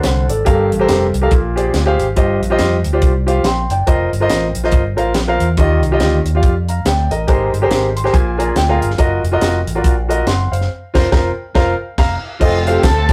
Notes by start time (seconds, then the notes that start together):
Already playing: D3
0.03 C2 C5 F#5, snare, closed hi-hat
0.28 G#1 A4 D5, closed hi-hat
0.45 G1 G2 G4 A4 A#4 F5, kick, closed hi-hat
0.71 A1, closed hi-hat
0.79 G4 A4 A#4 C5
0.88 F1, snare, closed hi-hat
1.14 C2, closed hi-hat
1.22 G4 A4 A#4 F5
1.31 A#1 A#2, kick, closed hi-hat
1.56 G4 G#4 C5 D5, closed hi-hat
1.73 D2, snare, closed hi-hat
1.86 G4 G#4 C5 F5
1.98 G#1, closed hi-hat
2.16 G1 G2 F4 G4 C5 D#5, kick, closed hi-hat
2.41 A#1, closed hi-hat
2.50 F4 G4 C5 D#5
2.58 F2, snare, closed hi-hat
2.84 D2, closed hi-hat
2.93 F4 G4 C5 D5
3.02 C2, kick, closed hi-hat
3.26 F4 G4 C5 F5, closed hi-hat
3.44 A#1 G5 C6, snare, closed hi-hat
3.69 F#1 D5 G5, closed hi-hat
3.87 F1 F4 A#4 C5 D#5, kick, closed hi-hat
4.13 G1, closed hi-hat
4.20 F4 A#4 C5 D#5
4.30 A1, snare, closed hi-hat
4.55 A#1, closed hi-hat
4.64 F4 A#4 C5 D#5, snare
4.72 G1, kick, closed hi-hat
4.96 A1 F4 A#4 C5 F5, closed hi-hat
5.14 A#1, snare, closed hi-hat
5.27 F4 A#4 C5 F5
5.40 E2, closed hi-hat
5.57 D#2 D#3 F4 G4 D5 D#5, kick, closed hi-hat
5.82 C2, closed hi-hat
5.92 F4 G4 D5 D#5
5.99 D2, snare, closed hi-hat
6.24 D#2, closed hi-hat
6.35 F4 G4 D5 F5
6.43 F2, kick, closed hi-hat
6.69 F5 A#5, closed hi-hat
6.85 D2 D5 G5, snare, closed hi-hat
7.10 A1 A#4 D#5, closed hi-hat
7.27 G#1 G#2 G4 G#4 A#4 C5, kick, closed hi-hat
7.52 G1, closed hi-hat
7.62 G4 G#4 A#4 C5
7.70 G#1, snare, closed hi-hat
7.96 C6, closed hi-hat
8.04 G4 G#4 A#4 C5, snare
8.13 A#1 A#2 G#5, kick, closed hi-hat
8.38 F4 G#4 A#4 D5, closed hi-hat
8.47 G#5
8.56 D2 G5, snare, closed hi-hat
8.69 F4 G#4 A#4 F5
8.81 G1 F5, closed hi-hat
8.91 snare
8.98 F#1 F4 F#4 A#4 D#5, kick, closed hi-hat
9.23 F1, closed hi-hat
9.32 F4 F#4 A#4 D#5
9.40 F1, snare, closed hi-hat
9.66 A1, closed hi-hat
9.75 F4 F#4 A#4 D5
9.84 A#1, kick, closed hi-hat
10.08 F4 F#4 A#4 D#5, closed hi-hat
10.26 F#1 F#5 C6, snare, closed hi-hat
10.51 F#1 C5 F5, closed hi-hat
10.61 snare
10.94 F1 F4 A#4 C5, kick, snare, crash
11.11 F1 F4 A#4 C5, kick, snare
11.55 F1 F4 A#4 C5 F5, kick, snare
11.98 F1 F5 A#5, kick, snare, crash
12.40 F1 A3 C4 F4 A4 C5 D#5, kick, crash
12.66 F4 G4 A4 C5 F5, closed hi-hat
12.83 D2 A4, kick, snare, closed hi-hat
13.09 F4 A4, kick, closed hi-hat